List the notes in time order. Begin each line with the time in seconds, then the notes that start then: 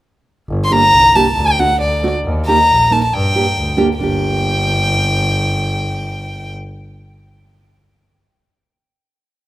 0.48 G1
0.64 C6
0.70 A#3 D4 G4 A#5
0.91 C2
1.15 A#3 D4 G4 A5
1.36 D2
1.48 G5
1.59 A3 D4 F#4 F#5
1.79 D2 D5
2.03 A3 D4 F#4
2.24 D#2
2.46 A#3 D#4 G4 A#5
2.69 A#1
2.90 A#3 D#4 A#4 A5
3.04 A5
3.13 G2 G5
3.35 A#3 D4 G4
3.56 D2
3.77 A#3 D4 G4
3.99 G1 A#3 D4 G5
4.03 G4